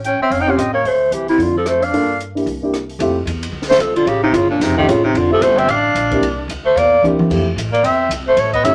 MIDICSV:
0, 0, Header, 1, 7, 480
1, 0, Start_track
1, 0, Key_signature, -1, "minor"
1, 0, Tempo, 268577
1, 1517, Time_signature, 4, 2, 24, 8
1, 5363, Key_signature, -1, "major"
1, 15634, End_track
2, 0, Start_track
2, 0, Title_t, "Clarinet"
2, 0, Program_c, 0, 71
2, 91, Note_on_c, 0, 79, 70
2, 352, Note_off_c, 0, 79, 0
2, 392, Note_on_c, 0, 76, 74
2, 563, Note_on_c, 0, 77, 77
2, 590, Note_off_c, 0, 76, 0
2, 741, Note_on_c, 0, 79, 90
2, 768, Note_off_c, 0, 77, 0
2, 900, Note_on_c, 0, 77, 68
2, 926, Note_off_c, 0, 79, 0
2, 1051, Note_on_c, 0, 75, 67
2, 1078, Note_off_c, 0, 77, 0
2, 1312, Note_off_c, 0, 75, 0
2, 1322, Note_on_c, 0, 73, 82
2, 1562, Note_on_c, 0, 72, 73
2, 1589, Note_off_c, 0, 73, 0
2, 2020, Note_on_c, 0, 67, 63
2, 2047, Note_off_c, 0, 72, 0
2, 2291, Note_off_c, 0, 67, 0
2, 2301, Note_on_c, 0, 64, 72
2, 2534, Note_on_c, 0, 65, 69
2, 2561, Note_off_c, 0, 64, 0
2, 2796, Note_off_c, 0, 65, 0
2, 2810, Note_on_c, 0, 69, 70
2, 3006, Note_on_c, 0, 72, 77
2, 3033, Note_off_c, 0, 69, 0
2, 3278, Note_on_c, 0, 77, 95
2, 3305, Note_off_c, 0, 72, 0
2, 3937, Note_off_c, 0, 77, 0
2, 6604, Note_on_c, 0, 72, 80
2, 6807, Note_on_c, 0, 69, 69
2, 6834, Note_off_c, 0, 72, 0
2, 7070, Note_off_c, 0, 69, 0
2, 7081, Note_on_c, 0, 65, 75
2, 7294, Note_on_c, 0, 67, 72
2, 7321, Note_off_c, 0, 65, 0
2, 7554, Note_off_c, 0, 67, 0
2, 7564, Note_on_c, 0, 63, 81
2, 7750, Note_on_c, 0, 65, 76
2, 7776, Note_off_c, 0, 63, 0
2, 8031, Note_off_c, 0, 65, 0
2, 8042, Note_on_c, 0, 62, 69
2, 8266, Note_on_c, 0, 63, 78
2, 8293, Note_off_c, 0, 62, 0
2, 8538, Note_off_c, 0, 63, 0
2, 8549, Note_on_c, 0, 67, 81
2, 8749, Note_on_c, 0, 65, 69
2, 8776, Note_off_c, 0, 67, 0
2, 9024, Note_off_c, 0, 65, 0
2, 9032, Note_on_c, 0, 63, 83
2, 9232, Note_on_c, 0, 65, 69
2, 9259, Note_off_c, 0, 63, 0
2, 9506, Note_off_c, 0, 65, 0
2, 9519, Note_on_c, 0, 69, 93
2, 9693, Note_on_c, 0, 72, 82
2, 9720, Note_off_c, 0, 69, 0
2, 9983, Note_on_c, 0, 76, 82
2, 10010, Note_off_c, 0, 72, 0
2, 10189, Note_on_c, 0, 77, 90
2, 10215, Note_off_c, 0, 76, 0
2, 11135, Note_off_c, 0, 77, 0
2, 11899, Note_on_c, 0, 72, 82
2, 12115, Note_on_c, 0, 74, 86
2, 12142, Note_off_c, 0, 72, 0
2, 12577, Note_off_c, 0, 74, 0
2, 13816, Note_on_c, 0, 74, 78
2, 14049, Note_on_c, 0, 76, 84
2, 14075, Note_off_c, 0, 74, 0
2, 14503, Note_off_c, 0, 76, 0
2, 14801, Note_on_c, 0, 72, 87
2, 14998, Note_on_c, 0, 73, 83
2, 15025, Note_off_c, 0, 72, 0
2, 15235, Note_off_c, 0, 73, 0
2, 15246, Note_on_c, 0, 75, 88
2, 15449, Note_on_c, 0, 76, 88
2, 15476, Note_off_c, 0, 75, 0
2, 15634, Note_off_c, 0, 76, 0
2, 15634, End_track
3, 0, Start_track
3, 0, Title_t, "Grand piano"
3, 0, Program_c, 1, 0
3, 831, Note_on_c, 1, 60, 72
3, 839, Note_on_c, 1, 61, 68
3, 859, Note_on_c, 1, 65, 69
3, 859, Note_on_c, 1, 67, 83
3, 1011, Note_off_c, 1, 60, 0
3, 1015, Note_off_c, 1, 61, 0
3, 1025, Note_off_c, 1, 65, 0
3, 1025, Note_off_c, 1, 67, 0
3, 3442, Note_on_c, 1, 58, 60
3, 3448, Note_on_c, 1, 62, 59
3, 3457, Note_on_c, 1, 65, 59
3, 3467, Note_on_c, 1, 69, 70
3, 3701, Note_off_c, 1, 58, 0
3, 3705, Note_off_c, 1, 62, 0
3, 3709, Note_off_c, 1, 65, 0
3, 3714, Note_off_c, 1, 69, 0
3, 4200, Note_on_c, 1, 58, 47
3, 4202, Note_on_c, 1, 62, 47
3, 4215, Note_on_c, 1, 64, 44
3, 4234, Note_on_c, 1, 67, 52
3, 4379, Note_off_c, 1, 58, 0
3, 4379, Note_off_c, 1, 62, 0
3, 4386, Note_off_c, 1, 64, 0
3, 4395, Note_off_c, 1, 67, 0
3, 4684, Note_on_c, 1, 58, 53
3, 4698, Note_on_c, 1, 62, 53
3, 4700, Note_on_c, 1, 64, 49
3, 4720, Note_on_c, 1, 67, 63
3, 4860, Note_off_c, 1, 58, 0
3, 4868, Note_off_c, 1, 62, 0
3, 4869, Note_off_c, 1, 64, 0
3, 4879, Note_off_c, 1, 67, 0
3, 5357, Note_on_c, 1, 57, 65
3, 5367, Note_on_c, 1, 60, 63
3, 5368, Note_on_c, 1, 64, 58
3, 5381, Note_on_c, 1, 65, 65
3, 5383, Note_on_c, 1, 67, 78
3, 5620, Note_off_c, 1, 57, 0
3, 5625, Note_off_c, 1, 60, 0
3, 5626, Note_off_c, 1, 64, 0
3, 5632, Note_off_c, 1, 65, 0
3, 5633, Note_off_c, 1, 67, 0
3, 8520, Note_on_c, 1, 57, 76
3, 8526, Note_on_c, 1, 60, 76
3, 8533, Note_on_c, 1, 61, 74
3, 8537, Note_on_c, 1, 65, 70
3, 8546, Note_on_c, 1, 67, 81
3, 8699, Note_off_c, 1, 57, 0
3, 8702, Note_off_c, 1, 60, 0
3, 8705, Note_off_c, 1, 61, 0
3, 8707, Note_off_c, 1, 65, 0
3, 8712, Note_off_c, 1, 67, 0
3, 9479, Note_on_c, 1, 57, 63
3, 9494, Note_on_c, 1, 60, 60
3, 9494, Note_on_c, 1, 64, 60
3, 9508, Note_on_c, 1, 65, 61
3, 9515, Note_on_c, 1, 67, 70
3, 9658, Note_off_c, 1, 57, 0
3, 9665, Note_off_c, 1, 64, 0
3, 9666, Note_off_c, 1, 60, 0
3, 9672, Note_off_c, 1, 65, 0
3, 9676, Note_off_c, 1, 67, 0
3, 10925, Note_on_c, 1, 58, 66
3, 10930, Note_on_c, 1, 60, 55
3, 10939, Note_on_c, 1, 62, 61
3, 10952, Note_on_c, 1, 64, 58
3, 10962, Note_on_c, 1, 67, 74
3, 11100, Note_off_c, 1, 58, 0
3, 11103, Note_off_c, 1, 60, 0
3, 11107, Note_off_c, 1, 62, 0
3, 11114, Note_off_c, 1, 64, 0
3, 11119, Note_off_c, 1, 67, 0
3, 12559, Note_on_c, 1, 58, 66
3, 12572, Note_on_c, 1, 60, 61
3, 12573, Note_on_c, 1, 62, 63
3, 12585, Note_on_c, 1, 64, 58
3, 12586, Note_on_c, 1, 67, 72
3, 13026, Note_off_c, 1, 60, 0
3, 13039, Note_off_c, 1, 58, 0
3, 13039, Note_off_c, 1, 64, 0
3, 13045, Note_on_c, 1, 57, 67
3, 13046, Note_off_c, 1, 62, 0
3, 13052, Note_off_c, 1, 67, 0
3, 13053, Note_on_c, 1, 60, 66
3, 13066, Note_on_c, 1, 64, 59
3, 13069, Note_on_c, 1, 65, 59
3, 13084, Note_on_c, 1, 67, 73
3, 13301, Note_off_c, 1, 57, 0
3, 13305, Note_off_c, 1, 60, 0
3, 13312, Note_off_c, 1, 64, 0
3, 13313, Note_off_c, 1, 65, 0
3, 13321, Note_off_c, 1, 67, 0
3, 15423, Note_on_c, 1, 57, 49
3, 15433, Note_on_c, 1, 61, 45
3, 15436, Note_on_c, 1, 63, 50
3, 15444, Note_on_c, 1, 64, 51
3, 15451, Note_on_c, 1, 67, 58
3, 15634, Note_off_c, 1, 57, 0
3, 15634, Note_off_c, 1, 61, 0
3, 15634, Note_off_c, 1, 63, 0
3, 15634, Note_off_c, 1, 64, 0
3, 15634, Note_off_c, 1, 67, 0
3, 15634, End_track
4, 0, Start_track
4, 0, Title_t, "Tenor saxophone"
4, 0, Program_c, 2, 66
4, 125, Note_on_c, 2, 61, 60
4, 370, Note_off_c, 2, 61, 0
4, 400, Note_on_c, 2, 60, 75
4, 574, Note_on_c, 2, 61, 55
4, 601, Note_off_c, 2, 60, 0
4, 723, Note_on_c, 2, 63, 73
4, 750, Note_off_c, 2, 61, 0
4, 869, Note_on_c, 2, 61, 59
4, 896, Note_off_c, 2, 63, 0
4, 1010, Note_on_c, 2, 60, 54
4, 1037, Note_off_c, 2, 61, 0
4, 1297, Note_off_c, 2, 60, 0
4, 1308, Note_on_c, 2, 58, 67
4, 1535, Note_on_c, 2, 57, 57
4, 1562, Note_off_c, 2, 58, 0
4, 2023, Note_on_c, 2, 52, 58
4, 2050, Note_off_c, 2, 57, 0
4, 2300, Note_off_c, 2, 52, 0
4, 2318, Note_on_c, 2, 48, 66
4, 2495, Note_on_c, 2, 50, 55
4, 2522, Note_off_c, 2, 48, 0
4, 2776, Note_off_c, 2, 50, 0
4, 2799, Note_on_c, 2, 53, 67
4, 2976, Note_on_c, 2, 57, 57
4, 3003, Note_off_c, 2, 53, 0
4, 3256, Note_on_c, 2, 62, 67
4, 3283, Note_off_c, 2, 57, 0
4, 3926, Note_off_c, 2, 62, 0
4, 6623, Note_on_c, 2, 57, 75
4, 6805, Note_on_c, 2, 53, 59
4, 6832, Note_off_c, 2, 57, 0
4, 7062, Note_off_c, 2, 53, 0
4, 7073, Note_on_c, 2, 50, 70
4, 7271, Note_on_c, 2, 49, 71
4, 7298, Note_off_c, 2, 50, 0
4, 7549, Note_off_c, 2, 49, 0
4, 7560, Note_on_c, 2, 48, 67
4, 7800, Note_on_c, 2, 49, 66
4, 7827, Note_off_c, 2, 48, 0
4, 8035, Note_off_c, 2, 49, 0
4, 8045, Note_on_c, 2, 46, 66
4, 8256, Note_on_c, 2, 48, 64
4, 8282, Note_off_c, 2, 46, 0
4, 8519, Note_off_c, 2, 48, 0
4, 8529, Note_on_c, 2, 51, 84
4, 8727, Note_on_c, 2, 49, 57
4, 8754, Note_off_c, 2, 51, 0
4, 8996, Note_off_c, 2, 49, 0
4, 9007, Note_on_c, 2, 48, 72
4, 9250, Note_on_c, 2, 50, 63
4, 9276, Note_off_c, 2, 48, 0
4, 9515, Note_off_c, 2, 50, 0
4, 9525, Note_on_c, 2, 53, 75
4, 9715, Note_on_c, 2, 57, 69
4, 9742, Note_off_c, 2, 53, 0
4, 9960, Note_on_c, 2, 60, 75
4, 9987, Note_off_c, 2, 57, 0
4, 10170, Note_on_c, 2, 62, 72
4, 10197, Note_off_c, 2, 60, 0
4, 11605, Note_off_c, 2, 62, 0
4, 11882, Note_on_c, 2, 57, 71
4, 12089, Note_on_c, 2, 58, 70
4, 12116, Note_off_c, 2, 57, 0
4, 12565, Note_off_c, 2, 58, 0
4, 13803, Note_on_c, 2, 58, 65
4, 14007, Note_on_c, 2, 60, 66
4, 14034, Note_off_c, 2, 58, 0
4, 14482, Note_off_c, 2, 60, 0
4, 14801, Note_on_c, 2, 57, 70
4, 14980, Note_off_c, 2, 57, 0
4, 14980, Note_on_c, 2, 57, 66
4, 15256, Note_off_c, 2, 57, 0
4, 15279, Note_on_c, 2, 59, 68
4, 15440, Note_on_c, 2, 61, 69
4, 15467, Note_off_c, 2, 59, 0
4, 15634, Note_off_c, 2, 61, 0
4, 15634, End_track
5, 0, Start_track
5, 0, Title_t, "Upright bass"
5, 0, Program_c, 3, 32
5, 0, Note_on_c, 3, 33, 71
5, 294, Note_off_c, 3, 33, 0
5, 540, Note_on_c, 3, 29, 72
5, 995, Note_off_c, 3, 29, 0
5, 1023, Note_on_c, 3, 45, 72
5, 1477, Note_off_c, 3, 45, 0
5, 1497, Note_on_c, 3, 38, 68
5, 1954, Note_off_c, 3, 38, 0
5, 1984, Note_on_c, 3, 36, 66
5, 2438, Note_off_c, 3, 36, 0
5, 2459, Note_on_c, 3, 41, 81
5, 3382, Note_off_c, 3, 41, 0
5, 3426, Note_on_c, 3, 43, 64
5, 4347, Note_off_c, 3, 43, 0
5, 4400, Note_on_c, 3, 36, 79
5, 5314, Note_off_c, 3, 36, 0
5, 5342, Note_on_c, 3, 41, 80
5, 5805, Note_off_c, 3, 41, 0
5, 5816, Note_on_c, 3, 40, 77
5, 6279, Note_off_c, 3, 40, 0
5, 6290, Note_on_c, 3, 38, 79
5, 6754, Note_off_c, 3, 38, 0
5, 6764, Note_on_c, 3, 36, 84
5, 7238, Note_off_c, 3, 36, 0
5, 7249, Note_on_c, 3, 33, 77
5, 7714, Note_off_c, 3, 33, 0
5, 7725, Note_on_c, 3, 31, 85
5, 8209, Note_off_c, 3, 31, 0
5, 8218, Note_on_c, 3, 29, 82
5, 8696, Note_off_c, 3, 29, 0
5, 8707, Note_on_c, 3, 33, 90
5, 9181, Note_off_c, 3, 33, 0
5, 9189, Note_on_c, 3, 29, 78
5, 9651, Note_off_c, 3, 29, 0
5, 9662, Note_on_c, 3, 31, 80
5, 10126, Note_off_c, 3, 31, 0
5, 10137, Note_on_c, 3, 33, 82
5, 10615, Note_off_c, 3, 33, 0
5, 10623, Note_on_c, 3, 34, 83
5, 11088, Note_off_c, 3, 34, 0
5, 11098, Note_on_c, 3, 36, 79
5, 11566, Note_off_c, 3, 36, 0
5, 11577, Note_on_c, 3, 38, 84
5, 12054, Note_off_c, 3, 38, 0
5, 12073, Note_on_c, 3, 40, 88
5, 12542, Note_off_c, 3, 40, 0
5, 12553, Note_on_c, 3, 38, 82
5, 13022, Note_off_c, 3, 38, 0
5, 13051, Note_on_c, 3, 41, 77
5, 13505, Note_off_c, 3, 41, 0
5, 13515, Note_on_c, 3, 45, 81
5, 13982, Note_off_c, 3, 45, 0
5, 13995, Note_on_c, 3, 40, 79
5, 14451, Note_off_c, 3, 40, 0
5, 14462, Note_on_c, 3, 36, 81
5, 14934, Note_off_c, 3, 36, 0
5, 14948, Note_on_c, 3, 33, 78
5, 15417, Note_off_c, 3, 33, 0
5, 15443, Note_on_c, 3, 31, 80
5, 15634, Note_off_c, 3, 31, 0
5, 15634, End_track
6, 0, Start_track
6, 0, Title_t, "Muted upright bass strokes"
6, 343, Note_on_c, 9, 29, 33
6, 522, Note_off_c, 9, 29, 0
6, 15634, End_track
7, 0, Start_track
7, 0, Title_t, "Drums"
7, 80, Note_on_c, 9, 42, 40
7, 259, Note_off_c, 9, 42, 0
7, 566, Note_on_c, 9, 46, 40
7, 745, Note_off_c, 9, 46, 0
7, 1046, Note_on_c, 9, 37, 56
7, 1049, Note_on_c, 9, 42, 48
7, 1224, Note_off_c, 9, 37, 0
7, 1228, Note_off_c, 9, 42, 0
7, 1525, Note_on_c, 9, 46, 35
7, 1704, Note_off_c, 9, 46, 0
7, 2005, Note_on_c, 9, 42, 43
7, 2184, Note_off_c, 9, 42, 0
7, 2294, Note_on_c, 9, 46, 31
7, 2472, Note_off_c, 9, 46, 0
7, 2500, Note_on_c, 9, 46, 39
7, 2679, Note_off_c, 9, 46, 0
7, 2964, Note_on_c, 9, 37, 55
7, 2968, Note_on_c, 9, 42, 49
7, 3143, Note_off_c, 9, 37, 0
7, 3146, Note_off_c, 9, 42, 0
7, 3262, Note_on_c, 9, 46, 34
7, 3441, Note_off_c, 9, 46, 0
7, 3464, Note_on_c, 9, 46, 40
7, 3643, Note_off_c, 9, 46, 0
7, 3942, Note_on_c, 9, 42, 45
7, 4120, Note_off_c, 9, 42, 0
7, 4238, Note_on_c, 9, 46, 33
7, 4414, Note_off_c, 9, 46, 0
7, 4414, Note_on_c, 9, 46, 39
7, 4593, Note_off_c, 9, 46, 0
7, 4891, Note_on_c, 9, 37, 56
7, 4895, Note_on_c, 9, 42, 45
7, 5070, Note_off_c, 9, 37, 0
7, 5074, Note_off_c, 9, 42, 0
7, 5175, Note_on_c, 9, 46, 31
7, 5354, Note_off_c, 9, 46, 0
7, 5363, Note_on_c, 9, 51, 58
7, 5542, Note_off_c, 9, 51, 0
7, 5846, Note_on_c, 9, 44, 49
7, 5846, Note_on_c, 9, 51, 62
7, 6025, Note_off_c, 9, 44, 0
7, 6025, Note_off_c, 9, 51, 0
7, 6126, Note_on_c, 9, 51, 68
7, 6305, Note_off_c, 9, 51, 0
7, 6472, Note_on_c, 9, 38, 29
7, 6633, Note_off_c, 9, 38, 0
7, 6633, Note_on_c, 9, 38, 43
7, 6792, Note_on_c, 9, 44, 56
7, 6792, Note_on_c, 9, 51, 59
7, 6812, Note_off_c, 9, 38, 0
7, 6971, Note_off_c, 9, 44, 0
7, 6971, Note_off_c, 9, 51, 0
7, 7080, Note_on_c, 9, 51, 48
7, 7258, Note_off_c, 9, 51, 0
7, 7277, Note_on_c, 9, 51, 50
7, 7455, Note_off_c, 9, 51, 0
7, 7754, Note_on_c, 9, 44, 63
7, 7754, Note_on_c, 9, 51, 61
7, 7933, Note_off_c, 9, 44, 0
7, 7933, Note_off_c, 9, 51, 0
7, 8240, Note_on_c, 9, 38, 38
7, 8243, Note_on_c, 9, 51, 60
7, 8418, Note_off_c, 9, 38, 0
7, 8422, Note_off_c, 9, 51, 0
7, 8525, Note_on_c, 9, 36, 50
7, 8703, Note_off_c, 9, 36, 0
7, 8733, Note_on_c, 9, 44, 63
7, 8733, Note_on_c, 9, 51, 63
7, 8912, Note_off_c, 9, 44, 0
7, 8912, Note_off_c, 9, 51, 0
7, 9206, Note_on_c, 9, 51, 56
7, 9385, Note_off_c, 9, 51, 0
7, 9685, Note_on_c, 9, 44, 52
7, 9685, Note_on_c, 9, 51, 71
7, 9863, Note_off_c, 9, 44, 0
7, 9863, Note_off_c, 9, 51, 0
7, 9978, Note_on_c, 9, 51, 46
7, 10157, Note_off_c, 9, 51, 0
7, 10161, Note_on_c, 9, 51, 65
7, 10340, Note_off_c, 9, 51, 0
7, 10643, Note_on_c, 9, 44, 58
7, 10643, Note_on_c, 9, 51, 67
7, 10821, Note_off_c, 9, 44, 0
7, 10821, Note_off_c, 9, 51, 0
7, 10927, Note_on_c, 9, 36, 66
7, 10929, Note_on_c, 9, 51, 47
7, 11106, Note_off_c, 9, 36, 0
7, 11107, Note_off_c, 9, 51, 0
7, 11131, Note_on_c, 9, 51, 64
7, 11310, Note_off_c, 9, 51, 0
7, 11607, Note_on_c, 9, 44, 53
7, 11607, Note_on_c, 9, 51, 63
7, 11786, Note_off_c, 9, 44, 0
7, 11786, Note_off_c, 9, 51, 0
7, 12106, Note_on_c, 9, 51, 59
7, 12284, Note_off_c, 9, 51, 0
7, 12580, Note_on_c, 9, 47, 42
7, 12583, Note_on_c, 9, 44, 51
7, 12758, Note_off_c, 9, 47, 0
7, 12762, Note_off_c, 9, 44, 0
7, 12856, Note_on_c, 9, 47, 65
7, 13035, Note_off_c, 9, 47, 0
7, 13050, Note_on_c, 9, 36, 67
7, 13061, Note_on_c, 9, 49, 67
7, 13228, Note_off_c, 9, 36, 0
7, 13239, Note_off_c, 9, 49, 0
7, 13550, Note_on_c, 9, 44, 60
7, 13550, Note_on_c, 9, 51, 62
7, 13729, Note_off_c, 9, 44, 0
7, 13729, Note_off_c, 9, 51, 0
7, 13841, Note_on_c, 9, 51, 41
7, 14018, Note_off_c, 9, 51, 0
7, 14018, Note_on_c, 9, 51, 64
7, 14197, Note_off_c, 9, 51, 0
7, 14492, Note_on_c, 9, 44, 56
7, 14492, Note_on_c, 9, 51, 71
7, 14671, Note_off_c, 9, 44, 0
7, 14671, Note_off_c, 9, 51, 0
7, 14957, Note_on_c, 9, 51, 63
7, 15136, Note_off_c, 9, 51, 0
7, 15248, Note_on_c, 9, 36, 41
7, 15254, Note_on_c, 9, 51, 46
7, 15427, Note_off_c, 9, 36, 0
7, 15432, Note_off_c, 9, 51, 0
7, 15454, Note_on_c, 9, 44, 58
7, 15454, Note_on_c, 9, 51, 70
7, 15633, Note_off_c, 9, 44, 0
7, 15633, Note_off_c, 9, 51, 0
7, 15634, End_track
0, 0, End_of_file